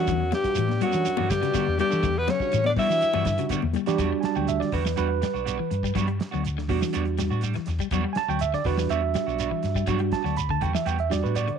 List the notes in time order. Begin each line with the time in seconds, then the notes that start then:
Already playing: F#2 E3 F#3 G3 B3 D4 F#4
0.07 E2 E3, kick, closed hi-hat, high conga, shekere
0.20 muted clean electric guitar stroke
0.32 G2 G4, muted clean electric guitar stroke, snare, closed hi-hat, high conga
0.36 G3
0.44 G3 D4 F#4, muted clean electric guitar stroke, kick, snare, closed hi-hat, shekere
0.55 A2 E3, closed hi-hat, high conga, shekere
0.68 muted clean electric guitar stroke, snare, high conga
0.81 F#2 G3 B3 D4 F#4, muted clean electric guitar stroke, closed hi-hat, low conga, shekere
0.85 F#3
0.92 E3 G3 D4 F#4, muted clean electric guitar stroke, closed hi-hat, shekere
1.05 muted clean electric guitar stroke, muted fingered electric bass stroke, closed hi-hat, high conga, shekere
1.17 G2 E3 G3 B3 D4 F#4, high conga
1.30 G2 D3 G3 G4, muted clean electric guitar stroke, kick, snare, closed hi-hat, shekere
1.41 C#3 G3 D4 F#4, snare, closed hi-hat, shekere
1.54 D3 G3 B3 D4 F#4, kick, snare, closed hi-hat, high conga, shekere
1.66 E2, muted clean electric guitar stroke
1.79 G2 G3 G4, muted clean electric guitar stroke, closed hi-hat, high conga, low conga, shekere
1.90 E3 G3 B3 D4 F#4 A4, shekere
2.03 E2 E3, kick, closed hi-hat, high conga, shekere
2.16 B2 B3 B4, muted clean electric guitar stroke
2.27 C#3 F#3 C#4 C#5, snare, closed hi-hat, high conga
2.40 G3 D4 F#4, muted clean electric guitar stroke, kick, shekere
2.52 A2 E3, closed hi-hat, high conga, shekere
2.64 D3 D5, muted clean electric guitar stroke, snare, high conga
2.69 D4
2.76 E3 G3 B3 D4 E4 F#4 E5, kick, open hi-hat, low conga, shekere
2.88 E3 G3 D4 F#4, muted clean electric guitar stroke, snare, shekere
3.01 muted clean electric guitar stroke, muted fingered electric bass stroke, closed hi-hat, high conga, shekere
3.13 G2 E3 G3 B3 D4 F#4, high conga
3.25 D3, kick, snare, closed hi-hat, shekere
3.38 C#3 G3 D4 F#4, closed hi-hat, shekere
3.49 D3 G3 B3 D4 F#4, kick, closed hi-hat, high conga, shekere
3.62 E2, muted clean electric guitar stroke, high conga
3.73 G3, muted clean electric guitar stroke, closed hi-hat, high conga, low conga, shekere
3.86 E3 G3 B3 D4 F#4 G4, snare, closed hi-hat, shekere
3.98 E2 F#3 G3 B3 D4 F#4, kick, closed hi-hat, shekere
4.11 G3, muted clean electric guitar stroke
4.21 G#5, muted clean electric guitar stroke, muted fingered electric bass stroke, snare, closed hi-hat
4.25 A5
4.35 D2 F#3 B3 D4 F#4 G5, shekere
4.47 E5, muted clean electric guitar stroke, closed hi-hat, shekere
4.60 D3 D5, snare
4.72 E2 D3 G3 B3 D4 F#4 B4, kick, open hi-hat, shekere
4.85 E3, muted clean electric guitar stroke, snare, shekere
4.96 E2 G3 B3 D4 F#4 B4, closed hi-hat, shekere
5.09 muted clean electric guitar stroke
5.21 G3, muted clean electric guitar stroke, snare, closed hi-hat, shekere
5.34 B1 D4 F#4, shekere
5.45 G3 B3 D4 F#4, closed hi-hat, shekere
5.59 E3, muted clean electric guitar stroke
5.70 G2, muted clean electric guitar stroke, closed hi-hat, shekere
5.83 G3, kick, shekere
5.95 G2 F#3 G3 B3 D4 F#4, kick, closed hi-hat, shekere
6.07 G3, muted clean electric guitar stroke, closed hi-hat
6.19 muted clean electric guitar stroke, snare, closed hi-hat
6.31 D2 F#3 B3 D4 F#4, shekere
6.43 muted clean electric guitar stroke, closed hi-hat, shekere
6.58 D3, snare
6.68 E2 B2 G3 B3 D4 F#4, kick, open hi-hat, shekere
6.81 E3, muted clean electric guitar stroke, snare, shekere
6.93 E2 G3 B3 D4 F#4, closed hi-hat, shekere
7.05 muted clean electric guitar stroke, closed hi-hat
7.17 G3, muted clean electric guitar stroke, snare, closed hi-hat, shekere
7.30 A2 B3 D4 F#4, shekere
7.41 G3 D4, muted clean electric guitar stroke, closed hi-hat, shekere
7.53 E3, muted clean electric guitar stroke, muted fingered electric bass stroke, snare, closed hi-hat
7.66 E2, muted clean electric guitar stroke, snare, closed hi-hat, shekere
7.78 G3, kick, closed hi-hat, shekere
7.91 E2 F#3 G3 B3 D4 F#4, kick, closed hi-hat, shekere
8.04 G3, muted clean electric guitar stroke
8.13 G#5, muted fingered electric bass stroke, muted clean electric guitar stroke, snare, closed hi-hat
8.17 A5
8.28 D2 F#3 B3 D4 F#4 G5, shekere
8.39 E5, muted clean electric guitar stroke, closed hi-hat, shekere
8.53 D3 D5, muted fingered electric bass stroke, snare
8.64 E2 D3 G3 B3 D4 F#4 B4, kick, open hi-hat, shekere
8.77 E3, muted clean electric guitar stroke, snare, shekere
8.89 E2 G3 B3 D4 F#4 E5, closed hi-hat, shekere
9.02 muted clean electric guitar stroke
9.14 G3, muted clean electric guitar stroke, snare, closed hi-hat, shekere
9.27 B1 B3 D4 F#4, shekere
9.39 G3 B3 D4 F#4, closed hi-hat, shekere
9.51 E3, muted clean electric guitar stroke
9.63 G2, muted clean electric guitar stroke, snare, closed hi-hat, shekere
9.75 G3, kick, shekere
9.87 G2 F#3 G3 B3 D4 F#4, kick, closed hi-hat, shekere
9.99 G3, muted clean electric guitar stroke, closed hi-hat
10.11 A5, muted clean electric guitar stroke, kick, snare, closed hi-hat
10.24 D2 F#3 B3 D4 F#4, snare, shekere
10.36 B5, muted clean electric guitar stroke, closed hi-hat, shekere
10.49 D3 A5, kick
10.61 E2 D3 G3 B3 F#4 G5, muted clean electric guitar stroke, kick, closed hi-hat, shekere
10.73 E3 E5, muted clean electric guitar stroke, snare, shekere
10.85 E2 G3 B3 F#4 G5, muted clean electric guitar stroke, closed hi-hat, shekere
10.98 E5, muted clean electric guitar stroke, closed hi-hat
11.10 G3 D4 F#4 D5, muted clean electric guitar stroke, snare, closed hi-hat, shekere
11.23 A2 B3 D4 F#4 B4, shekere
11.35 G3 B3 D4 F#4 D5, closed hi-hat, shekere
11.48 D3, muted clean electric guitar stroke, muted fingered electric bass stroke, closed hi-hat